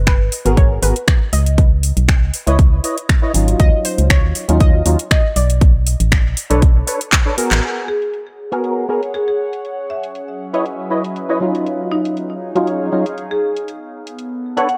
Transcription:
Already playing: F#1
0.07 B4, finger snap, kick, closed hi-hat
0.20 G#1
0.32 open hi-hat
0.45 G#1 B3 F#4 G#4 A#4, closed hi-hat
0.57 C#5, kick, closed hi-hat
0.82 G#1 B3 F#4 G#4 A#4 B4, open hi-hat
0.96 closed hi-hat
1.08 finger snap, kick, closed hi-hat
1.33 C#2 D#5, open hi-hat
1.46 closed hi-hat
1.58 kick, closed hi-hat
1.83 open hi-hat
1.97 B1, closed hi-hat
2.08 finger snap, kick, closed hi-hat
2.22 C#2
2.34 open hi-hat
2.47 C#2 E4 B4 C#5 D#5, closed hi-hat
2.59 kick, closed hi-hat
2.83 E4 B4 C#5 D#5, open hi-hat
2.98 closed hi-hat
3.09 finger snap, kick, closed hi-hat
3.22 E4 B4 C#5 D#5
3.33 G#1 F#3 C#4 D#4 F4, open hi-hat
3.48 closed hi-hat
3.60 D#2 D#5, kick, closed hi-hat
3.85 C5, open hi-hat
3.98 C#2, closed hi-hat
4.10 C#5, finger snap, kick, closed hi-hat
4.24 D#2
4.35 open hi-hat
4.48 D#2 F#3 C#4 D#4 F4, closed hi-hat
4.60 D#5, kick, closed hi-hat
4.85 D#2 F#3 C#4 D#4 F4, open hi-hat
4.99 closed hi-hat
5.11 D#5, finger snap, kick, closed hi-hat
5.36 B1 D5, open hi-hat
5.50 closed hi-hat
5.61 kick, closed hi-hat
5.87 open hi-hat
6.00 A1, closed hi-hat
6.12 finger snap, kick, closed hi-hat
6.25 B1
6.37 open hi-hat
6.50 B1 D4 A4 B4 C#5, closed hi-hat
6.62 kick, closed hi-hat
6.87 D4 A4 B4 C#5, open hi-hat
7.01 closed hi-hat
7.13 finger snap, kick, clap, closed hi-hat
7.26 D4 A4 B4 C#5
7.37 B3 F#4 G#4 A#4, open hi-hat
7.51 A1, clap, closed hi-hat
7.63 G#4, closed hi-hat
7.87 G#4 F#5
8.02 closed hi-hat
8.07 C#5
8.14 closed hi-hat
8.52 B3 F#4 G#4 A#4, closed hi-hat
8.64 closed hi-hat
8.89 B3 F#4 G#4 A#4
9.03 closed hi-hat
9.14 G#4, closed hi-hat
9.28 G#4
9.53 closed hi-hat
9.65 C#4, closed hi-hat
9.80 F#3
9.90 E5
10.03 closed hi-hat
10.15 closed hi-hat
10.20 E5
10.53 E4 B4 C#5 D#5, closed hi-hat
10.66 closed hi-hat
10.90 E4 B4 C#5 D#5
11.04 closed hi-hat
11.16 closed hi-hat
11.29 E4 B4 C#5 D#5
11.40 F#3 C#4 D#4 F4
11.55 closed hi-hat
11.66 D#4, closed hi-hat
11.87 G#4
11.92 D#4
12.05 C#5, closed hi-hat
12.17 closed hi-hat
12.55 F#3 C#4 D#4 F4 F5, closed hi-hat
12.67 closed hi-hat
12.92 F#3 C#4 D#4 F4
13.06 closed hi-hat
13.18 closed hi-hat
13.31 G#4
13.56 closed hi-hat
13.68 B3, closed hi-hat
14.07 A4, closed hi-hat
14.19 closed hi-hat
14.57 D4 A4 B4 C#5 D5 F#5, closed hi-hat
14.69 F#5, closed hi-hat

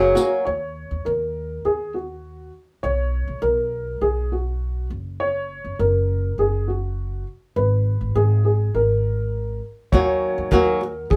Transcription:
Already playing: F#1 F#2 C#3 F#3 A#3 C#4 F#4
0.15 F#3 A#3 C#4 F#4, tambourine
0.45 D#2 C#5
0.91 D#2
1.05 D#2 A#4
1.65 D#2 G#4
1.94 F#4
2.83 B1 C#5
3.28 B1
3.42 B1 A#4
4.01 B1 G#4
4.32 F#4
4.90 F#1
5.20 C#5
5.64 F#1
5.79 F#1 A#4
6.38 F#1 G#4
6.68 F#4
7.56 G#1 B4
8.01 G#1
8.15 G#1 G#4
8.45 G#4
8.74 G#1 A#4
9.92 D#2 D#3 F#3 A#3 C#4 F#4 C#5, kick
10.38 D#2
10.51 D#2 D#3 F#3 A#3 C#4 F#4 A#4, kick
10.81 D#3 F#3
11.10 D#2 D#3 F#3 G#4, kick

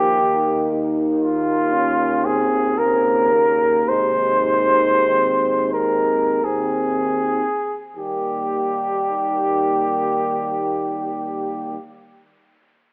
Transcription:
Already playing: D#2 F3 A#3 D#4 G4
0.21 D#3
0.71 D#2
1.21 F4
1.72 C#4
2.25 C4 G#4
2.76 C#3 A#3 C4 A#4
3.32 A#3
3.88 C3 G#3 D#4 C5
5.08 D#3 C4
5.73 C4 A#4
6.43 D#3 C4 G#4
7.96 D#2 D#3 G3 A#3 G4

